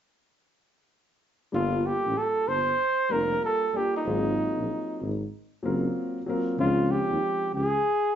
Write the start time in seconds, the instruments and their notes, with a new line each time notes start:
1.52 tuba G1, grand piano G3 A#3 D4 F4 A4, flugelhorn F4
1.86 flugelhorn G4
2.05 tuba A1
2.18 flugelhorn A4
2.48 tuba G1, flugelhorn C5
3.10 tuba F1, grand piano G3 A#3 D4 F4 A#4, flugelhorn A#4
3.45 flugelhorn A4
3.73 grand piano G3 A#3 D4 F4 A4, flugelhorn G4
3.96 flugelhorn D#4
4.05 tuba G#1, grand piano F#3 A#3 C4 F4 G#4
4.58 tuba A#1
5.01 tuba G#1
5.63 tuba F#1, grand piano F#3 A#3 C4 F4 A#4
6.26 grand piano F#3 A#3 C4 F4 A#4
6.59 tuba C#2, grand piano F3 G#3 C4 C#4 D#4, flugelhorn F4
6.91 flugelhorn G4
7.10 tuba D#2
7.54 tuba C#2, flugelhorn G#4